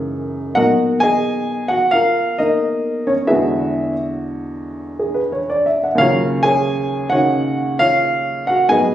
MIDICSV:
0, 0, Header, 1, 2, 480
1, 0, Start_track
1, 0, Tempo, 690449
1, 393, Time_signature, 4, 2, 24, 8
1, 1828, Tempo, 674916
1, 6322, End_track
2, 0, Start_track
2, 0, Title_t, "Upright piano"
2, 0, Program_c, 0, 0
2, 0, Note_on_c, 0, 42, 55
2, 0, Note_on_c, 0, 49, 52
2, 0, Note_on_c, 0, 52, 52
2, 0, Note_on_c, 0, 56, 51
2, 0, Note_on_c, 0, 58, 51
2, 0, Note_on_c, 0, 63, 56
2, 383, Note_on_c, 0, 78, 94
2, 390, Note_off_c, 0, 42, 0
2, 392, Note_on_c, 0, 75, 65
2, 393, Note_off_c, 0, 49, 0
2, 394, Note_on_c, 0, 70, 67
2, 395, Note_off_c, 0, 52, 0
2, 396, Note_on_c, 0, 47, 52
2, 398, Note_on_c, 0, 66, 72
2, 400, Note_off_c, 0, 56, 0
2, 406, Note_off_c, 0, 63, 0
2, 407, Note_off_c, 0, 58, 0
2, 407, Note_on_c, 0, 54, 46
2, 419, Note_on_c, 0, 58, 48
2, 426, Note_on_c, 0, 63, 52
2, 456, Note_off_c, 0, 78, 0
2, 690, Note_off_c, 0, 75, 0
2, 691, Note_off_c, 0, 70, 0
2, 693, Note_off_c, 0, 66, 0
2, 697, Note_on_c, 0, 80, 108
2, 713, Note_on_c, 0, 75, 66
2, 718, Note_on_c, 0, 68, 72
2, 1164, Note_off_c, 0, 75, 0
2, 1166, Note_off_c, 0, 68, 0
2, 1171, Note_on_c, 0, 78, 90
2, 1179, Note_on_c, 0, 66, 63
2, 1198, Note_off_c, 0, 80, 0
2, 1329, Note_on_c, 0, 77, 94
2, 1335, Note_off_c, 0, 66, 0
2, 1342, Note_on_c, 0, 65, 67
2, 1347, Note_off_c, 0, 78, 0
2, 1349, Note_on_c, 0, 70, 67
2, 1633, Note_off_c, 0, 77, 0
2, 1640, Note_off_c, 0, 65, 0
2, 1644, Note_off_c, 0, 70, 0
2, 1654, Note_off_c, 0, 63, 0
2, 1655, Note_off_c, 0, 58, 0
2, 1657, Note_on_c, 0, 75, 80
2, 1663, Note_on_c, 0, 70, 60
2, 1664, Note_on_c, 0, 63, 61
2, 1666, Note_on_c, 0, 58, 42
2, 1680, Note_off_c, 0, 63, 0
2, 1691, Note_on_c, 0, 63, 42
2, 2117, Note_off_c, 0, 70, 0
2, 2140, Note_on_c, 0, 61, 60
2, 2141, Note_on_c, 0, 73, 71
2, 2157, Note_off_c, 0, 75, 0
2, 2178, Note_off_c, 0, 61, 0
2, 2179, Note_off_c, 0, 73, 0
2, 2285, Note_on_c, 0, 64, 58
2, 2286, Note_on_c, 0, 76, 81
2, 2288, Note_on_c, 0, 68, 54
2, 2290, Note_on_c, 0, 71, 58
2, 2310, Note_off_c, 0, 58, 0
2, 2310, Note_on_c, 0, 40, 59
2, 2312, Note_off_c, 0, 47, 0
2, 2313, Note_on_c, 0, 56, 53
2, 2315, Note_on_c, 0, 50, 53
2, 2318, Note_off_c, 0, 54, 0
2, 2319, Note_on_c, 0, 66, 69
2, 2323, Note_off_c, 0, 63, 0
2, 2750, Note_off_c, 0, 64, 0
2, 2751, Note_off_c, 0, 76, 0
2, 2752, Note_off_c, 0, 68, 0
2, 2753, Note_off_c, 0, 71, 0
2, 3509, Note_on_c, 0, 68, 41
2, 3616, Note_on_c, 0, 71, 50
2, 3659, Note_off_c, 0, 68, 0
2, 3744, Note_on_c, 0, 73, 46
2, 3790, Note_off_c, 0, 71, 0
2, 3867, Note_on_c, 0, 74, 55
2, 3969, Note_off_c, 0, 73, 0
2, 3983, Note_on_c, 0, 76, 55
2, 4072, Note_off_c, 0, 74, 0
2, 4108, Note_on_c, 0, 78, 47
2, 4135, Note_off_c, 0, 76, 0
2, 4190, Note_on_c, 0, 39, 64
2, 4213, Note_on_c, 0, 77, 98
2, 4218, Note_on_c, 0, 49, 62
2, 4229, Note_off_c, 0, 40, 0
2, 4230, Note_off_c, 0, 56, 0
2, 4230, Note_on_c, 0, 73, 73
2, 4232, Note_off_c, 0, 50, 0
2, 4234, Note_off_c, 0, 66, 0
2, 4237, Note_on_c, 0, 65, 74
2, 4239, Note_on_c, 0, 70, 70
2, 4246, Note_on_c, 0, 54, 61
2, 4270, Note_on_c, 0, 61, 70
2, 4275, Note_off_c, 0, 78, 0
2, 4286, Note_off_c, 0, 77, 0
2, 4524, Note_off_c, 0, 73, 0
2, 4528, Note_off_c, 0, 65, 0
2, 4529, Note_off_c, 0, 70, 0
2, 4529, Note_on_c, 0, 80, 110
2, 4539, Note_on_c, 0, 68, 74
2, 4544, Note_on_c, 0, 73, 70
2, 4990, Note_off_c, 0, 80, 0
2, 4995, Note_off_c, 0, 68, 0
2, 4997, Note_off_c, 0, 73, 0
2, 5002, Note_off_c, 0, 49, 0
2, 5004, Note_on_c, 0, 78, 92
2, 5013, Note_on_c, 0, 49, 50
2, 5020, Note_on_c, 0, 66, 60
2, 5023, Note_on_c, 0, 73, 59
2, 5025, Note_on_c, 0, 51, 42
2, 5040, Note_on_c, 0, 63, 50
2, 5472, Note_off_c, 0, 66, 0
2, 5474, Note_off_c, 0, 73, 0
2, 5500, Note_on_c, 0, 77, 102
2, 5506, Note_on_c, 0, 73, 60
2, 5507, Note_off_c, 0, 78, 0
2, 5508, Note_on_c, 0, 65, 63
2, 5956, Note_off_c, 0, 73, 0
2, 5958, Note_off_c, 0, 65, 0
2, 5983, Note_on_c, 0, 78, 86
2, 5996, Note_off_c, 0, 77, 0
2, 5998, Note_on_c, 0, 66, 67
2, 6127, Note_off_c, 0, 39, 0
2, 6134, Note_off_c, 0, 54, 0
2, 6135, Note_off_c, 0, 78, 0
2, 6138, Note_on_c, 0, 44, 62
2, 6138, Note_on_c, 0, 80, 98
2, 6139, Note_off_c, 0, 49, 0
2, 6143, Note_off_c, 0, 66, 0
2, 6145, Note_off_c, 0, 51, 0
2, 6145, Note_on_c, 0, 54, 53
2, 6145, Note_on_c, 0, 56, 53
2, 6147, Note_on_c, 0, 59, 66
2, 6152, Note_on_c, 0, 75, 68
2, 6153, Note_off_c, 0, 63, 0
2, 6154, Note_on_c, 0, 68, 72
2, 6157, Note_on_c, 0, 71, 72
2, 6167, Note_off_c, 0, 61, 0
2, 6212, Note_off_c, 0, 80, 0
2, 6322, Note_off_c, 0, 44, 0
2, 6322, Note_off_c, 0, 54, 0
2, 6322, Note_off_c, 0, 56, 0
2, 6322, Note_off_c, 0, 59, 0
2, 6322, Note_off_c, 0, 68, 0
2, 6322, Note_off_c, 0, 71, 0
2, 6322, Note_off_c, 0, 75, 0
2, 6322, End_track
0, 0, End_of_file